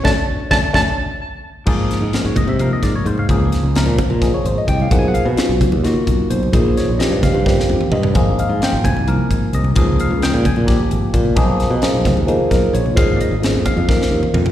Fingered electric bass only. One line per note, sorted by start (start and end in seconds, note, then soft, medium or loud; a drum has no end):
0.05 0.13 D2 loud
0.51 0.59 D2 medium
0.74 0.83 D2 loud
1.67 1.88 G#2 medium
2.01 2.12 G#2 medium
2.25 2.46 G#2 medium
2.47 2.68 C3 medium
2.83 2.93 G#2 medium
3.05 3.26 G#2 medium
3.29 3.50 C#2 medium
3.63 3.84 C#2 medium
3.86 3.97 A#2 medium
4.10 4.31 A#2 medium
4.33 muted fingered electric bass stroke soft
4.45 4.55 G#1 medium
4.68 4.89 C2 medium
4.91 5.12 B1 loud
5.25 5.36 B2 medium
5.49 5.70 B1 medium
5.72 5.93 D#2 medium
6.07 6.18 B1 medium
6.31 6.51 B1 medium
6.53 6.74 A#1 medium
6.88 7.09 A#1 medium
7.11 7.21 G2 medium
7.34 7.55 G2 medium
7.57 muted fingered electric bass stroke soft
7.69 7.79 F2 medium
7.92 8.13 G2 medium
8.15 8.36 G#1 medium
8.49 8.60 G#2 medium
8.73 8.93 G#1 medium
8.96 9.17 C2 medium
9.31 9.41 G#1 medium
9.53 9.74 C2 medium
9.76 9.97 C#2 loud
10.10 10.31 C#2 medium
10.33 10.44 A#2 medium
10.57 10.78 A#2 medium
10.80 muted fingered electric bass stroke soft
10.91 11.02 G#1 medium
11.14 11.35 A#2 medium
11.37 11.57 B1 loud
11.70 11.81 B2 loud
11.93 12.14 B1 medium
12.16 12.37 D#2 medium
12.51 12.62 B1 medium
12.73 12.94 A#1 medium
12.97 13.18 G#1 loud
13.31 13.52 G#1 medium
13.54 13.65 F2 medium
13.77 13.97 F2 medium
14.00 muted fingered electric bass stroke soft
14.11 14.21 D#2 medium
14.34 14.52 F2 medium